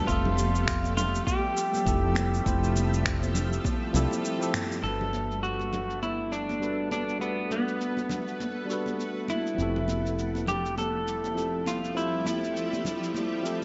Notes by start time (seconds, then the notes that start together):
Already playing: G3 A3 D4
0.04 F1 F3 C4 F4 E5, kick
0.09 G4 A4, shaker
0.25 low conga
0.37 high conga, shaker
0.55 shaker
0.68 finger snap, kick, shaker
0.84 high conga, shaker
0.97 F4, low conga, shaker
1.15 shaker
1.27 G4, kick, high conga, shaker
1.57 shaker
1.74 high conga, shaker
1.84 F1 F3 C4 E4 G4 A4, kick, shaker
2.15 finger snap, high conga, shaker
2.34 shaker
2.44 F1 F3 C4 E4 G4 C5, kick, shaker
2.64 shaker
2.76 high conga, shaker
2.94 shaker
3.06 finger snap, kick, shaker
3.22 high conga, shaker
3.35 low conga, shaker
3.53 shaker
3.64 kick, high conga, shaker
3.93 C2 F3 C4 E4 G4 A4, low conga, shaker
4.11 high conga, shaker
4.25 shaker
4.39 F3 C4 E4 G4 A4, shaker
4.54 finger snap, mid tom, high conga, shaker
4.72 shaker
4.80 G1 G3 D4 F#4 A4
4.84 A3 B3 A4 B4, shaker
5.01 low conga
5.13 high conga, shaker
5.31 shaker
5.43 F#4, shaker
5.60 high conga, shaker
5.73 low conga, shaker
5.90 shaker
6.03 E4, high conga, shaker
6.32 D4, shaker
6.49 high conga, shaker
6.60 G3 D4 F#4 A4 B4, shaker
6.91 D4, high conga, shaker
7.09 shaker
7.19 G3 B3 D4 F#4 A4 D5, shaker
7.51 B3, high conga, shaker
7.68 shaker
7.81 shaker
7.97 high conga, shaker
8.09 low conga, shaker
8.28 shaker
8.40 high conga, shaker
8.66 G3 D4 F#4
8.70 A4 B4, shaker
8.86 high conga, shaker
9.00 shaker
9.28 E4, high conga, shaker
9.47 shaker
9.55 F1 F3 C4 E4
9.59 F3 G3 G4 A4, shaker
9.76 low conga
9.88 high conga, shaker
10.06 shaker
10.19 shaker
10.35 high conga, shaker
10.47 G4, low conga, shaker
10.66 shaker
10.78 A4, high conga, shaker
11.08 shaker
11.24 high conga, shaker
11.34 F3 C4 E4 G4 A4, shaker
11.66 F4, high conga, shaker
11.84 shaker
11.94 F3 C4 E4 G4 C5, shaker
12.26 E4, high conga, shaker
12.44 shaker
12.57 shaker
12.73 high conga, shaker
12.85 low conga, shaker
13.03 shaker
13.14 high conga, shaker
13.42 F3 C4 E4 G4, shaker
13.46 A4